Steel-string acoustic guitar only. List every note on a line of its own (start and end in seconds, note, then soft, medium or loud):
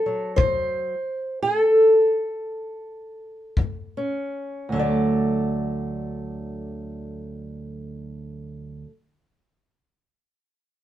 0.00 0.35 C4 medium
0.00 0.36 A4 loud
0.06 0.94 F#3 medium
0.36 0.93 D2 medium
0.36 1.41 C5 loud
1.42 3.57 A4 medium
3.59 4.25 D#2 medium
3.97 4.67 C#4 medium
4.69 8.83 D2 medium
4.69 8.87 D3 medium
4.74 8.88 F#3 medium
4.74 8.90 A3 medium
4.79 8.90 D5 medium